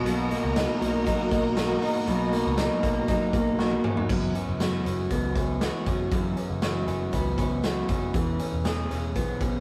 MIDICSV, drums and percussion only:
0, 0, Header, 1, 2, 480
1, 0, Start_track
1, 0, Tempo, 505476
1, 55, Time_signature, 4, 2, 24, 8
1, 9117, End_track
2, 0, Start_track
2, 0, Title_t, "Drums"
2, 57, Note_on_c, 9, 42, 93
2, 152, Note_off_c, 9, 42, 0
2, 294, Note_on_c, 9, 42, 70
2, 389, Note_off_c, 9, 42, 0
2, 533, Note_on_c, 9, 38, 108
2, 533, Note_on_c, 9, 42, 102
2, 628, Note_off_c, 9, 38, 0
2, 628, Note_off_c, 9, 42, 0
2, 779, Note_on_c, 9, 42, 87
2, 874, Note_off_c, 9, 42, 0
2, 1009, Note_on_c, 9, 38, 35
2, 1011, Note_on_c, 9, 42, 80
2, 1013, Note_on_c, 9, 36, 83
2, 1104, Note_off_c, 9, 38, 0
2, 1106, Note_off_c, 9, 42, 0
2, 1108, Note_off_c, 9, 36, 0
2, 1248, Note_on_c, 9, 36, 102
2, 1254, Note_on_c, 9, 42, 82
2, 1343, Note_off_c, 9, 36, 0
2, 1349, Note_off_c, 9, 42, 0
2, 1489, Note_on_c, 9, 38, 127
2, 1493, Note_on_c, 9, 42, 92
2, 1584, Note_off_c, 9, 38, 0
2, 1588, Note_off_c, 9, 42, 0
2, 1728, Note_on_c, 9, 46, 86
2, 1823, Note_off_c, 9, 46, 0
2, 1969, Note_on_c, 9, 42, 93
2, 2064, Note_off_c, 9, 42, 0
2, 2210, Note_on_c, 9, 42, 72
2, 2305, Note_off_c, 9, 42, 0
2, 2446, Note_on_c, 9, 38, 111
2, 2446, Note_on_c, 9, 42, 94
2, 2541, Note_off_c, 9, 38, 0
2, 2541, Note_off_c, 9, 42, 0
2, 2689, Note_on_c, 9, 36, 91
2, 2691, Note_on_c, 9, 42, 82
2, 2784, Note_off_c, 9, 36, 0
2, 2786, Note_off_c, 9, 42, 0
2, 2923, Note_on_c, 9, 38, 34
2, 2925, Note_on_c, 9, 42, 80
2, 2929, Note_on_c, 9, 36, 85
2, 3018, Note_off_c, 9, 38, 0
2, 3020, Note_off_c, 9, 42, 0
2, 3024, Note_off_c, 9, 36, 0
2, 3165, Note_on_c, 9, 36, 96
2, 3171, Note_on_c, 9, 42, 78
2, 3260, Note_off_c, 9, 36, 0
2, 3265, Note_off_c, 9, 42, 0
2, 3407, Note_on_c, 9, 38, 60
2, 3502, Note_off_c, 9, 38, 0
2, 3528, Note_on_c, 9, 48, 67
2, 3623, Note_off_c, 9, 48, 0
2, 3647, Note_on_c, 9, 45, 93
2, 3742, Note_off_c, 9, 45, 0
2, 3770, Note_on_c, 9, 43, 92
2, 3865, Note_off_c, 9, 43, 0
2, 3888, Note_on_c, 9, 36, 104
2, 3891, Note_on_c, 9, 49, 87
2, 3983, Note_off_c, 9, 36, 0
2, 3986, Note_off_c, 9, 49, 0
2, 4130, Note_on_c, 9, 42, 65
2, 4225, Note_off_c, 9, 42, 0
2, 4370, Note_on_c, 9, 38, 98
2, 4370, Note_on_c, 9, 42, 90
2, 4465, Note_off_c, 9, 38, 0
2, 4465, Note_off_c, 9, 42, 0
2, 4617, Note_on_c, 9, 42, 78
2, 4712, Note_off_c, 9, 42, 0
2, 4849, Note_on_c, 9, 36, 77
2, 4849, Note_on_c, 9, 42, 77
2, 4944, Note_off_c, 9, 36, 0
2, 4944, Note_off_c, 9, 42, 0
2, 5085, Note_on_c, 9, 36, 96
2, 5093, Note_on_c, 9, 42, 74
2, 5180, Note_off_c, 9, 36, 0
2, 5188, Note_off_c, 9, 42, 0
2, 5329, Note_on_c, 9, 38, 111
2, 5333, Note_on_c, 9, 42, 88
2, 5424, Note_off_c, 9, 38, 0
2, 5428, Note_off_c, 9, 42, 0
2, 5569, Note_on_c, 9, 36, 89
2, 5569, Note_on_c, 9, 42, 76
2, 5664, Note_off_c, 9, 36, 0
2, 5664, Note_off_c, 9, 42, 0
2, 5808, Note_on_c, 9, 36, 112
2, 5810, Note_on_c, 9, 42, 83
2, 5903, Note_off_c, 9, 36, 0
2, 5905, Note_off_c, 9, 42, 0
2, 6047, Note_on_c, 9, 42, 68
2, 6142, Note_off_c, 9, 42, 0
2, 6287, Note_on_c, 9, 38, 108
2, 6287, Note_on_c, 9, 42, 93
2, 6382, Note_off_c, 9, 38, 0
2, 6382, Note_off_c, 9, 42, 0
2, 6531, Note_on_c, 9, 42, 75
2, 6626, Note_off_c, 9, 42, 0
2, 6768, Note_on_c, 9, 42, 79
2, 6770, Note_on_c, 9, 36, 81
2, 6863, Note_off_c, 9, 42, 0
2, 6865, Note_off_c, 9, 36, 0
2, 7007, Note_on_c, 9, 36, 94
2, 7012, Note_on_c, 9, 42, 79
2, 7102, Note_off_c, 9, 36, 0
2, 7107, Note_off_c, 9, 42, 0
2, 7252, Note_on_c, 9, 38, 114
2, 7256, Note_on_c, 9, 42, 82
2, 7347, Note_off_c, 9, 38, 0
2, 7351, Note_off_c, 9, 42, 0
2, 7488, Note_on_c, 9, 42, 75
2, 7492, Note_on_c, 9, 36, 92
2, 7583, Note_off_c, 9, 42, 0
2, 7587, Note_off_c, 9, 36, 0
2, 7731, Note_on_c, 9, 42, 85
2, 7732, Note_on_c, 9, 36, 107
2, 7826, Note_off_c, 9, 42, 0
2, 7827, Note_off_c, 9, 36, 0
2, 7972, Note_on_c, 9, 42, 69
2, 8067, Note_off_c, 9, 42, 0
2, 8215, Note_on_c, 9, 38, 105
2, 8215, Note_on_c, 9, 42, 93
2, 8310, Note_off_c, 9, 38, 0
2, 8310, Note_off_c, 9, 42, 0
2, 8461, Note_on_c, 9, 42, 76
2, 8556, Note_off_c, 9, 42, 0
2, 8693, Note_on_c, 9, 42, 78
2, 8696, Note_on_c, 9, 36, 79
2, 8788, Note_off_c, 9, 42, 0
2, 8791, Note_off_c, 9, 36, 0
2, 8933, Note_on_c, 9, 36, 98
2, 8935, Note_on_c, 9, 42, 72
2, 9028, Note_off_c, 9, 36, 0
2, 9030, Note_off_c, 9, 42, 0
2, 9117, End_track
0, 0, End_of_file